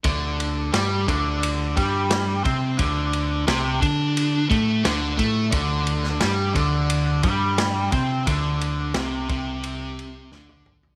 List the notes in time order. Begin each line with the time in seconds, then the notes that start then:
0.04 D2 D3, kick, ride
0.40 ride
0.72 G2 G3, snare, ride
1.08 D2 D3, kick, ride
1.43 ride
1.76 G2 G3, kick, ride
2.11 snare, ride
2.44 C3 C4, kick, ride
2.78 D2 D3, kick, ride
3.13 ride
3.47 C2 C3, snare, ride
3.80 D3 D4, kick, ride
4.17 ride
4.49 A2 A3, kick, ride
4.83 D2 D3, snare, ride
5.17 A2 A3, kick, ride
5.51 D2 D3, kick, ride
5.87 ride
6.03 snare
6.21 G2 G3, snare, ride
6.54 D2 D3, kick, ride
6.90 ride
7.23 G2 G3, kick, ride
7.58 snare, ride
7.92 C3 C4, kick, ride
8.27 D2 D3, kick, ride
8.61 ride
8.94 C2 C3, snare, ride
9.29 C2 C3, kick, ride
9.63 ride
9.99 ride
10.32 D2 D3, snare
10.49 high tom
10.66 mid tom
10.83 floor tom